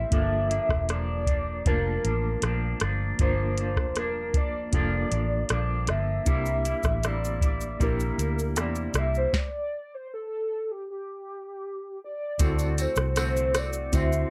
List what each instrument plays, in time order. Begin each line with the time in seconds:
Already playing: clean electric guitar G3 C4 E4, reed electric piano A3 C4 E4 A4, soft synth lead E5
0.10 fingered electric bass G1, clean electric guitar G2 F3 A#3 D4, reed electric piano A#3 D4 F4 A4, soft synth lead E5, kick, closed hi-hat
0.50 clean electric guitar F3 A#3 D4, closed hi-hat
0.69 fingered electric bass E1, kick, cross-stick
0.88 clean electric guitar G2 F3 A#3 D4, soft synth lead D5, cross-stick, closed hi-hat
1.27 clean electric guitar F3 A#3 D4, kick, closed hi-hat
1.65 fingered electric bass F1, clean electric guitar G2 F3 A#3 D4, reed electric piano A3 D4 F4 A5, soft synth lead A#4, kick, closed hi-hat
1.72 reed electric piano A#3
2.04 fingered electric bass A1, clean electric guitar F3 A#3 D4, closed hi-hat
2.42 fingered electric bass A#1, clean electric guitar G2 F3 A#3 D4, cross-stick, closed hi-hat
2.80 fingered electric bass G1, clean electric guitar F3 A#3 D4, cross-stick, closed hi-hat
3.18 fingered electric bass G1, clean electric guitar G2 F3 A#3 D4, reed electric piano A#3 D4 F4 A#4, soft synth lead C5, kick, closed hi-hat
3.58 clean electric guitar F3 A#3 D4, closed hi-hat
3.77 fingered electric bass E1, kick, cross-stick
3.95 clean electric guitar G2 F3 A#3 D4, soft synth lead A#4, cross-stick, closed hi-hat
4.34 clean electric guitar F3 A#3 D4, soft synth lead D5, kick, closed hi-hat
4.72 fingered electric bass F1, clean electric guitar G2 F3 A#3 D4, reed electric piano A#3 D4 F4 A4, soft synth lead D5, kick, closed hi-hat
5.12 fingered electric bass A1, clean electric guitar F3 A#3 D4, closed hi-hat
5.49 fingered electric bass A#1, clean electric guitar G2 F3 A#3 D4, soft synth lead D5, cross-stick, closed hi-hat
5.87 fingered electric bass G1, clean electric guitar F3 A#3 D4, soft synth lead E5, cross-stick, closed hi-hat
6.26 fingered electric bass C2, clean electric guitar C3 G3 A#3 E4, reed electric piano A#3 D4 E4 G4, soft synth lead E5, kick, closed hi-hat, shaker
6.46 shaker
6.65 clean electric guitar G3 A#3 E4, closed hi-hat, shaker
6.83 fingered electric bass A1, kick, cross-stick, shaker
7.04 clean electric guitar C3 G3 A#3 E4, soft synth lead D5, cross-stick, closed hi-hat, shaker
7.25 shaker
7.41 clean electric guitar G3 A#3 E4, kick, closed hi-hat, shaker
7.61 shaker
7.80 fingered electric bass A#1, clean electric guitar C3 G3 A#3 E4, reed electric piano A#3 D4 E4 G4, soft synth lead A#4, kick, closed hi-hat, shaker
8.00 shaker
8.18 fingered electric bass D2, clean electric guitar G3 A#3 E4, closed hi-hat, shaker
8.39 shaker
8.56 fingered electric bass E2, clean electric guitar C3 G3 A#3 E4, soft synth lead D5, cross-stick, closed hi-hat, shaker
8.75 shaker
8.94 fingered electric bass C2, clean electric guitar G3 A#3 E4, soft synth lead E5, cross-stick, closed hi-hat, shaker
9.15 soft synth lead C5, shaker
9.33 soft synth lead D5, kick, snare
9.94 soft synth lead C5
10.14 soft synth lead A4
10.71 soft synth lead G4
10.90 soft synth lead G4
12.04 soft synth lead D5
12.39 fingered electric bass D2, clean electric guitar D3 A3 C4 F#4, reed electric piano C4 E4 F#4 A4, kick, closed hi-hat, tambourine, shaker
12.59 tambourine, shaker
12.78 clean electric guitar A3 C4 F#4, soft synth lead C5, closed hi-hat, tambourine, shaker
12.96 fingered electric bass C2, cross-stick, shaker
13.16 clean electric guitar D3 A3 C4 F#4, soft synth lead C5, cross-stick, closed hi-hat, tambourine, shaker
13.37 shaker
13.54 clean electric guitar A3 C4 F#4, soft synth lead D5, cross-stick, closed hi-hat, tambourine, shaker
13.73 shaker
13.92 fingered electric bass D2, clean electric guitar D3 A3 C4 F#4, reed electric piano C4 E4 F#4 C5, soft synth lead E5, kick, closed hi-hat, tambourine, shaker
14.12 shaker